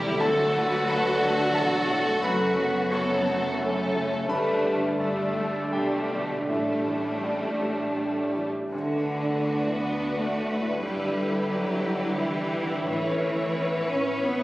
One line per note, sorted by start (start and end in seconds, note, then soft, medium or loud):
0.00 0.22 E1 medium
0.00 0.22 E2 medium
0.00 0.24 F2 medium
0.00 0.24 C3 medium
0.00 2.17 D3 medium
0.00 0.19 G3 medium
0.00 0.22 G3 medium
0.00 0.24 A3 medium
0.00 0.19 C4 medium
0.00 0.21 E4 medium
0.00 0.19 G4 medium
0.00 0.20 G4 soft
0.00 0.23 G4 medium
0.00 0.24 G4 medium
0.00 0.16 A4 soft
0.00 0.24 A4 medium
0.00 0.24 G5 loud
0.00 0.20 A5 medium
0.08 2.08 A3 soft
0.13 2.13 F#4 medium
0.17 2.91 F#4 medium
0.17 2.17 A4 medium
0.17 0.84 A5 medium
0.21 1.53 D2 medium
0.21 1.52 D2 medium
0.21 1.54 D2 medium
0.21 1.55 F#3 medium
0.21 2.20 F#3 medium
0.21 2.20 D4 medium
0.21 0.55 A4 medium
0.21 0.90 A4 medium
0.55 1.09 A2 soft
0.55 0.90 B4 medium
0.87 1.19 F#4 soft
0.87 1.19 A4 medium
0.87 1.56 A4 medium
0.87 1.57 B4 medium
0.87 1.51 B5 medium
1.23 1.77 A3 soft
1.55 2.22 E1 medium
1.55 2.22 E2 medium
1.55 1.89 F#3 medium
1.55 1.87 F#4 soft
1.55 2.23 A4 medium
1.55 1.87 A4 medium
1.55 2.22 A4 medium
1.55 2.19 A5 medium
1.90 2.23 A2 soft
1.90 2.22 A3 medium
2.05 4.23 F#2 medium
2.09 4.15 A3 soft
2.14 4.28 F#4 medium
2.18 4.24 A4 soft
2.18 2.87 B5 medium
2.23 4.26 F#1 medium
2.23 4.25 F#2 medium
2.23 4.26 F#2 medium
2.23 6.31 A3 medium
2.23 2.57 A3 medium
2.23 4.25 C#4 medium
2.23 2.91 F#4 medium
2.23 2.93 B4 medium
2.58 3.13 C#3 soft
2.58 3.61 B3 medium
2.91 3.23 F#4 soft
2.91 3.60 F#4 medium
2.91 3.23 A4 soft
2.91 3.60 A4 medium
2.91 3.60 C#5 medium
2.91 3.57 C#6 medium
3.26 3.81 A3 soft
3.61 4.30 A3 medium
3.61 4.30 C#4 medium
3.61 3.92 F#4 soft
3.61 3.92 A4 soft
3.61 4.29 A4 medium
3.95 4.29 C#3 soft
4.12 6.42 G2 medium
4.16 6.34 A3 soft
4.21 6.38 D4 soft
4.25 5.68 G1 medium
4.25 6.44 G2 medium
4.25 4.95 A3 medium
4.25 8.34 D4 medium
4.25 8.15 A4 soft
4.29 5.68 G2 medium
4.29 4.96 G3 medium
4.29 4.96 D4 medium
4.29 5.02 B4 medium
4.29 4.96 B5 medium
4.65 5.22 D3 soft
4.99 5.71 G3 medium
4.99 5.71 A3 soft
4.99 5.32 D4 soft
4.99 5.71 D4 medium
4.99 5.32 A4 soft
4.99 5.75 A4 medium
4.99 5.68 A5 medium
5.35 5.95 A3 soft
5.72 6.47 B1 soft
5.72 6.47 B2 soft
5.72 6.47 G3 soft
5.72 6.47 A3 soft
5.72 6.06 D4 soft
5.72 6.47 D4 soft
5.72 6.48 G4 medium
5.72 6.06 A4 soft
5.72 6.45 G5 medium
6.11 6.49 D3 soft
6.30 8.66 A2 soft
6.35 8.95 A3 soft
6.39 9.42 D4 soft
6.44 8.34 G3 medium
6.44 8.73 G4 soft
6.48 8.51 A1 soft
6.48 8.52 A2 soft
6.48 8.69 A2 soft
6.48 8.48 G3 soft
6.48 8.48 A3 soft
6.48 8.48 D4 soft
6.48 8.32 E4 soft
6.48 8.32 E5 soft
6.87 7.46 E3 soft
7.23 7.57 D4 soft
7.23 7.57 G4 soft
7.59 8.20 A3 soft
7.97 8.31 D4 soft
7.97 8.31 G4 soft
8.35 8.72 E3 soft
8.72 10.78 D2 soft
8.72 10.85 D3 soft
8.72 9.74 D3 soft
8.72 10.79 D4 soft
8.72 10.78 F#4 soft
8.72 12.83 B4 soft
8.96 10.85 A3 soft
8.96 9.34 D4 soft
9.19 11.27 B3 soft
9.19 9.57 F#4 soft
9.43 10.58 D4 soft
9.43 9.81 D4 soft
9.66 10.04 A2 soft
9.66 10.85 F#4 soft
9.78 10.13 B3 medium
9.90 10.28 D4 soft
9.90 10.35 B4 soft
10.13 10.83 A3 medium
10.13 10.51 F#4 soft
10.13 12.18 D5 soft
10.36 10.74 D4 soft
10.36 11.96 B4 soft
10.59 10.83 A2 soft
10.59 11.50 D4 soft
10.82 12.87 G1 soft
10.82 12.90 G2 soft
10.82 12.83 G2 soft
10.82 11.49 G3 medium
10.82 14.43 E4 soft
10.82 12.83 G4 soft
11.05 12.90 D3 soft
11.05 11.41 D4 soft
11.28 13.32 B3 soft
11.28 11.65 E4 soft
11.50 12.19 F#3 medium
11.50 11.87 D4 soft
11.50 12.63 D4 soft
11.73 12.10 D3 soft
11.73 13.77 E4 soft
11.95 12.32 D4 soft
11.95 12.41 B4 soft
12.18 12.86 E3 medium
12.18 12.55 E4 soft
12.18 12.90 D5 soft
12.41 12.78 D4 soft
12.41 14.01 B4 soft
12.63 12.86 D3 soft
12.63 12.90 D4 soft
12.86 14.43 A1 soft
12.86 14.43 A2 soft
12.86 13.87 E3 medium
12.86 14.43 B4 soft
12.86 14.43 C#5 soft
13.10 14.43 E3 soft
13.10 13.46 C#4 soft
13.33 14.43 B3 soft
13.33 13.69 E4 soft
13.55 13.92 C#4 soft
13.55 14.43 C#4 soft
13.78 14.14 E3 soft
13.78 14.43 E4 soft
13.90 14.23 C#4 medium
14.01 14.36 C#4 soft
14.01 14.43 B4 soft
14.23 14.43 B3 medium
14.23 14.43 E4 soft
14.23 14.43 C#5 soft